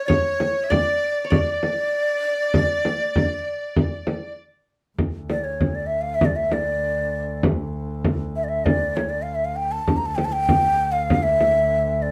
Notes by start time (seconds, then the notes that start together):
0.05 C#5 D5
0.10 C#5, frame drum
0.40 frame drum
0.64 E5
0.70 D5, frame drum
1.25 C#5
1.30 D5, frame drum
1.63 frame drum
2.54 frame drum
2.85 frame drum
3.16 frame drum
3.76 frame drum
4.07 frame drum
4.98 D2, frame drum
5.30 D5, frame drum
5.44 C#5
5.61 frame drum
5.75 D5
5.86 E5
6.01 F5
6.15 E5
6.21 frame drum
6.25 D5
6.36 E5
6.52 D5, frame drum
7.43 frame drum
8.04 frame drum
8.36 E5
8.44 D5
8.49 E5
8.65 D5, frame drum
8.96 C#5, frame drum
9.09 D5
9.22 F5
9.35 E5
9.45 F5
9.56 G5
9.72 A5
9.87 D2, frame drum
9.97 A#5
10.06 A5
10.16 G5, frame drum
10.25 A5
10.32 G5
10.49 frame drum
10.92 F5
11.10 frame drum
11.23 E5
11.41 frame drum
12.02 D5